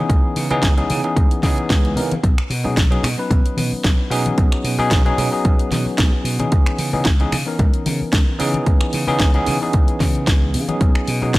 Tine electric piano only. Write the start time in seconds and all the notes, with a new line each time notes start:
Already playing: E3 B3 C#4 D#4 G#4
0.50 E3 B3 C#4 D#4 G#4
0.77 E3 B3 C#4 D#4 G#4
1.04 E3 B3 C#4 D#4 G#4
1.43 E3 B3 C#4 D#4 G#4
1.96 E3 B3 C#4 D#4 A#4
2.64 F#3 B3 C#4 D#4 G#4
2.91 F#3 B3 C#4 D#4 G#4
3.17 F#3 B3 C#4 D#4 B4
4.10 F#3 B3 C#4 D#4 G#4
4.78 F#3 B3 C#4 D#4 G#4
5.05 F#3 B3 C#4 D#4 G#4
5.31 F#3 B3 C#4 D#4 G#4
6.39 E3 B3 C#4 D#4 G#4
6.93 E3 B3 C#4 D#4 G#4
7.20 E3 B3 C#4 D#4 G#4
7.46 E3 B3 C#4 D#4 A#4
8.39 E3 B3 C#4 D#4 G#4
9.07 E3 B3 C#4 D#4 G#4
9.34 E3 B3 C#4 D#4 G#4
9.61 E3 B3 C#4 D#4 G#4
10.68 F#3 B3 C#4 D#4 G#4
11.22 F#3 B3 C#4 D#4 G#4